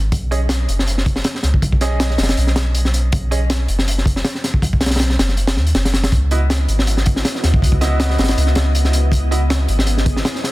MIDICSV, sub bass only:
0, 0, Header, 1, 2, 480
1, 0, Start_track
1, 0, Tempo, 375000
1, 160, Time_signature, 4, 2, 24, 8
1, 13464, End_track
2, 0, Start_track
2, 0, Title_t, "Sub bass"
2, 0, Program_c, 0, 38
2, 0, Note_on_c, 0, 32, 100
2, 142, Note_off_c, 0, 32, 0
2, 155, Note_on_c, 0, 35, 90
2, 860, Note_off_c, 0, 35, 0
2, 878, Note_on_c, 0, 30, 81
2, 1581, Note_off_c, 0, 30, 0
2, 1838, Note_on_c, 0, 37, 86
2, 2057, Note_off_c, 0, 37, 0
2, 2077, Note_on_c, 0, 35, 92
2, 2781, Note_off_c, 0, 35, 0
2, 2800, Note_on_c, 0, 30, 82
2, 3018, Note_off_c, 0, 30, 0
2, 3041, Note_on_c, 0, 35, 81
2, 3983, Note_off_c, 0, 35, 0
2, 4003, Note_on_c, 0, 35, 92
2, 4704, Note_off_c, 0, 35, 0
2, 4720, Note_on_c, 0, 30, 79
2, 5422, Note_off_c, 0, 30, 0
2, 5916, Note_on_c, 0, 35, 92
2, 6620, Note_off_c, 0, 35, 0
2, 6641, Note_on_c, 0, 30, 81
2, 7121, Note_on_c, 0, 39, 88
2, 7140, Note_off_c, 0, 30, 0
2, 7338, Note_off_c, 0, 39, 0
2, 7361, Note_on_c, 0, 30, 98
2, 7823, Note_off_c, 0, 30, 0
2, 7836, Note_on_c, 0, 37, 90
2, 8540, Note_off_c, 0, 37, 0
2, 8560, Note_on_c, 0, 32, 83
2, 9262, Note_off_c, 0, 32, 0
2, 9520, Note_on_c, 0, 39, 89
2, 9738, Note_off_c, 0, 39, 0
2, 9757, Note_on_c, 0, 37, 95
2, 10461, Note_off_c, 0, 37, 0
2, 10479, Note_on_c, 0, 32, 80
2, 10697, Note_off_c, 0, 32, 0
2, 10718, Note_on_c, 0, 37, 82
2, 11661, Note_off_c, 0, 37, 0
2, 11669, Note_on_c, 0, 37, 91
2, 12377, Note_off_c, 0, 37, 0
2, 12399, Note_on_c, 0, 32, 84
2, 13102, Note_off_c, 0, 32, 0
2, 13464, End_track
0, 0, End_of_file